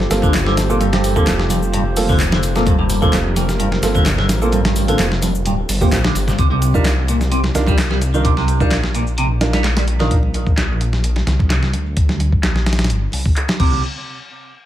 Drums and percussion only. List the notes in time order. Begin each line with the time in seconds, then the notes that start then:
0.00 snare
0.11 snare, closed hi-hat, open hi-hat, high conga, shaker
0.22 kick, muted conga, shaker
0.34 snare, clap, closed hi-hat, shaker
0.46 snare, high conga
0.57 snare, closed hi-hat, open hi-hat, shaker
0.70 shaker
0.80 closed hi-hat, high conga, shaker
0.93 snare, closed hi-hat, low conga
1.04 closed hi-hat, open hi-hat, shaker
1.16 kick, high conga, shaker
1.27 snare, clap, closed hi-hat, shaker
1.39 snare
1.49 closed hi-hat, open hi-hat, high conga, shaker
1.62 shaker
1.73 closed hi-hat, shaker
1.97 open hi-hat, high conga, shaker
2.09 kick, shaker
2.20 clap, closed hi-hat, shaker
2.31 snare, muted conga, high conga
2.43 closed hi-hat, open hi-hat, shaker
2.55 snare, shaker
2.66 kick, closed hi-hat, high conga, shaker
2.79 low conga
2.90 closed hi-hat, open hi-hat, shaker
3.02 kick, high conga, shaker
3.13 snare, clap, closed hi-hat, shaker
3.36 closed hi-hat, open hi-hat, high conga, shaker
3.49 snare, shaker
3.60 closed hi-hat, shaker
3.72 snare, muted conga
3.82 snare, closed hi-hat, open hi-hat, high conga, shaker
3.95 kick, muted conga, shaker
4.06 snare, clap, closed hi-hat, shaker
4.18 snare, high conga
4.29 snare, closed hi-hat, open hi-hat, shaker
4.42 shaker
4.52 closed hi-hat, high conga, shaker
4.65 snare, closed hi-hat, low conga
4.76 open hi-hat, shaker
4.87 closed hi-hat, high conga, shaker
4.99 snare, clap, closed hi-hat, shaker
5.12 snare
5.22 closed hi-hat, open hi-hat, high conga, shaker
5.35 shaker
5.46 closed hi-hat, shaker
5.69 open hi-hat, muted conga, high conga, shaker
5.81 kick, shaker
5.92 snare, clap, closed hi-hat, shaker
6.04 snare, muted conga, high conga
6.15 closed hi-hat, open hi-hat, shaker
6.27 snare, low conga, shaker
6.39 kick, closed hi-hat, shaker
6.52 high conga
6.62 closed hi-hat, shaker
6.74 kick, shaker
6.85 snare, clap, closed hi-hat, shaker
7.08 closed hi-hat, shaker
7.21 snare, shaker
7.32 closed hi-hat, shaker
7.44 snare, muted conga
7.55 snare, closed hi-hat, low conga, shaker
7.67 kick, muted conga, shaker
7.78 snare, clap, closed hi-hat, shaker
7.90 snare, high conga
8.02 closed hi-hat, shaker
8.14 shaker
8.25 kick, closed hi-hat, shaker
8.37 snare, high conga
8.48 closed hi-hat, shaker
8.60 kick, shaker
8.71 snare, clap, closed hi-hat, shaker
8.84 snare
8.95 closed hi-hat, shaker
9.07 shaker
9.18 closed hi-hat, shaker
9.41 snare, closed hi-hat, muted conga, shaker
9.53 snare, closed hi-hat, shaker
9.64 snare, clap, closed hi-hat, shaker
9.77 snare, closed hi-hat, muted conga, high conga
9.87 closed hi-hat, shaker
9.99 snare, low conga, shaker
10.11 kick, closed hi-hat, shaker
10.23 high conga
10.34 closed hi-hat, shaker
10.47 kick, shaker
10.57 snare, clap, closed hi-hat
10.81 closed hi-hat, shaker
10.93 snare, shaker
11.04 closed hi-hat
11.16 snare, muted conga
11.27 snare, closed hi-hat, low conga, shaker
11.39 kick, muted conga, shaker
11.50 snare, clap, closed hi-hat
11.63 snare, high conga
11.73 closed hi-hat, shaker
11.86 shaker
11.97 kick, closed hi-hat
12.09 snare, high conga
12.19 closed hi-hat, high conga, shaker
12.32 kick, shaker
12.43 snare, clap, closed hi-hat
12.56 snare
12.66 snare, closed hi-hat
12.73 snare, closed hi-hat
12.79 snare, closed hi-hat
12.84 snare, closed hi-hat
12.90 closed hi-hat
13.12 open hi-hat, muted conga, shaker
13.26 kick
13.36 clap, closed hi-hat
13.48 snare, muted conga, high conga
13.60 kick, crash
13.72 low conga